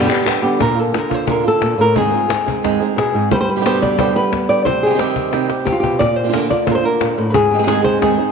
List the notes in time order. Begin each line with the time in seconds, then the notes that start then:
0.00 D3 G3 B3 G4
0.05 B2 D3 G3 B3 G4
0.09 G2 B2 D3 G3 B3 G4, clap
0.26 D3 G3 B3 G4, muted nylon-string guitar stroke, cajon slap, clap
0.42 D3 G3 B3 G4, cajon slap
0.59 A#2 D3 A#3 D4 F4 A#4, cajon bass
0.76 A#3 D4 F4 A4
0.93 D3 A#4, muted nylon-string guitar stroke, cajon slap
1.10 A#3 D4 F4, cajon bass
1.14 C5
1.27 A#2 D3 A#3 D4 F4, cajon bass
1.31 A#4
1.44 A#3 D4 F4 A4
1.61 A#2, muted nylon-string guitar stroke, cajon slap
1.78 A2 A#3 D4 F4 A#4
1.95 G#2 D#3 G#3 C4 D#4 G#4, cajon bass
2.11 G#3 C4 D#4 F4 G#4, cajon slap
2.29 C4 D#4, muted nylon-string guitar stroke, cajon slap
2.46 G#3 C4 D#4 G#4, cajon bass
2.63 G#2 D#3 G#3 C4 D#4 G#4, cajon bass, cajon slap
2.80 G#3 C4 D#4 G#4
2.96 B2 G#4, muted nylon-string guitar stroke, cajon slap
3.14 G#2 G#3 C4 D#4 G#4
3.31 G3 B4 C5, muted nylon-string guitar stroke, cajon bass
3.41 C5
3.49 B4, cajon slap
3.56 B2 D3 G3 B3 G4
3.61 B2 D3 G3 B3 G4
3.65 G2 B2 D3 G3 B3 G4 C5, cajon slap
3.82 D5, cajon bass
3.98 G2 B2 D3 G3 B3 G4 C5, cajon bass
4.15 D3 G3 B3 G4 B4
4.32 B3, muted nylon-string guitar stroke, cajon bass, cajon slap
4.49 D3 G3 B3 G4 D5
4.65 C3 C5, muted nylon-string guitar stroke, cajon bass
4.83 D#3 G3 C4 G4 G#4, cajon slap
4.90 D#3 G3 C4 G4
4.95 C3 G3 C4 G4
4.99 D#3 G3 C4 G4, cajon slap
5.16 cajon bass
5.32 C3 D#3 G3 C4 D#4 G4, cajon slap
5.49 G3 C4 G4, cajon slap
5.65 C3 G4, muted nylon-string guitar stroke, cajon bass
5.72 F4
5.80 B2 C4 G4, cajon bass
5.85 G3
5.99 A#2 D5, muted nylon-string guitar stroke, cajon bass
6.16 C5, cajon slap
6.24 D3 A#3 D4 F4
6.28 D3 A#3 D4 F4
6.32 A#2 D3 A#3 D4 F4 A#4, cajon slap
6.50 A#3 D4 F4 D5, cajon bass
6.67 A#2 D3 A#3 D4 F4 C5, cajon bass
6.71 A#4 C5
6.84 A#3 D4 F4 A#4
7.01 A#2 A#3 D4 F4, cajon slap
7.17 A2, muted nylon-string guitar stroke, cajon slap
7.30 G#2 B4
7.34 G#4, muted nylon-string guitar stroke, cajon bass
7.51 D#3 G#3 C4 D#4 G4 G#4
7.58 D#3 G#3 C4 D#4 G#4
7.63 D#3 G#3 C4 D#4 G#4
7.67 G#2 D#3 G#3 C4 D#4 G#4, cajon slap
7.84 G#3 C4 D#4 G#4 C5, cajon bass
8.01 G#2 D#3 G#3 C4 D#4 G#4, cajon bass, cajon slap
8.18 G#3 C4 D#4 G#4